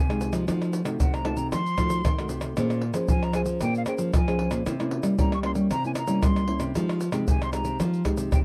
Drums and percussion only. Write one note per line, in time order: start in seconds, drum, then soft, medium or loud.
0.10 pandeiro soft
0.10 tamborim medium
0.10 shaker soft
0.21 pandeiro medium
0.21 shaker medium
0.33 pandeiro medium
0.33 tamborim medium
0.33 shaker medium
0.48 pandeiro medium
0.48 tamborim medium
0.48 shaker medium
0.48 surdo medium
0.62 pandeiro soft
0.62 tamborim medium
0.62 shaker soft
0.73 pandeiro medium
0.73 shaker medium
0.85 pandeiro medium
0.85 tamborim medium
0.85 shaker medium
1.00 pandeiro medium
1.00 shaker medium
1.00 surdo medium
1.14 pandeiro soft
1.14 tamborim medium
1.14 shaker soft
1.25 pandeiro medium
1.25 tamborim medium
1.37 pandeiro medium
1.37 shaker medium
1.52 pandeiro medium
1.52 tamborim medium
1.52 shaker medium
1.52 surdo medium
1.66 pandeiro soft
1.66 shaker soft
1.78 pandeiro medium
1.78 tamborim medium
1.78 shaker medium
1.78 surdo medium
1.90 pandeiro medium
1.90 shaker medium
2.05 pandeiro medium
2.05 tamborim medium
2.05 shaker medium
2.05 surdo medium
2.19 pandeiro soft
2.19 tamborim medium
2.19 shaker soft
2.29 pandeiro medium
2.29 shaker medium
2.41 pandeiro medium
2.41 tamborim medium
2.41 shaker medium
2.57 pandeiro medium
2.57 tamborim medium
2.57 shaker medium
2.57 surdo medium
2.70 pandeiro soft
2.70 tamborim medium
2.70 shaker soft
2.81 pandeiro medium
2.94 pandeiro medium
2.94 tamborim medium
2.94 shaker medium
3.08 pandeiro medium
3.08 shaker medium
3.08 surdo loud
3.23 pandeiro soft
3.23 tamborim medium
3.23 shaker soft
3.33 pandeiro medium
3.33 tamborim medium
3.33 shaker medium
3.46 pandeiro medium
3.46 shaker medium
3.61 pandeiro medium
3.61 tamborim medium
3.61 shaker medium
3.61 surdo medium
3.75 pandeiro soft
3.75 shaker soft
3.86 pandeiro medium
3.86 tamborim medium
3.86 shaker medium
3.98 pandeiro medium
3.98 shaker medium
4.14 pandeiro medium
4.14 tamborim medium
4.14 shaker medium
4.14 surdo loud
4.28 pandeiro soft
4.28 tamborim medium
4.28 shaker soft
4.39 pandeiro medium
4.51 pandeiro medium
4.51 tamborim medium
4.51 shaker medium
4.66 pandeiro medium
4.66 tamborim medium
4.66 shaker medium
4.66 surdo medium
4.80 pandeiro soft
4.80 tamborim medium
4.80 shaker soft
4.91 pandeiro medium
5.03 pandeiro medium
5.03 tamborim medium
5.03 shaker medium
5.19 pandeiro medium
5.19 shaker medium
5.19 surdo medium
5.32 pandeiro soft
5.32 tamborim medium
5.32 shaker soft
5.43 pandeiro medium
5.43 tamborim medium
5.55 pandeiro medium
5.55 shaker medium
5.71 pandeiro medium
5.71 tamborim medium
5.71 shaker medium
5.71 surdo medium
5.84 pandeiro soft
5.84 shaker soft
5.95 pandeiro medium
5.95 tamborim medium
5.95 shaker medium
6.07 pandeiro medium
6.07 shaker medium
6.23 pandeiro medium
6.23 tamborim medium
6.23 shaker medium
6.23 surdo loud
6.36 pandeiro soft
6.36 tamborim medium
6.36 shaker soft
6.48 pandeiro medium
6.60 pandeiro medium
6.60 tamborim medium
6.60 shaker medium
6.75 pandeiro medium
6.75 tamborim medium
6.75 shaker medium
6.75 surdo medium
6.89 pandeiro soft
6.89 tamborim medium
6.89 shaker soft
7.01 pandeiro medium
7.01 shaker medium
7.12 pandeiro medium
7.12 tamborim medium
7.12 shaker medium
7.28 pandeiro medium
7.28 shaker medium
7.28 surdo loud
7.42 pandeiro soft
7.42 tamborim medium
7.42 shaker soft
7.53 pandeiro medium
7.53 tamborim medium
7.53 shaker medium
7.65 pandeiro medium
7.65 shaker medium
7.80 pandeiro medium
7.80 tamborim medium
7.80 shaker medium
7.80 surdo medium
7.94 pandeiro soft
7.94 shaker soft
8.05 pandeiro medium
8.05 tamborim medium
8.05 shaker medium
8.05 surdo medium
8.17 pandeiro medium
8.17 shaker medium
8.32 pandeiro medium
8.32 tamborim medium
8.32 shaker medium
8.32 surdo loud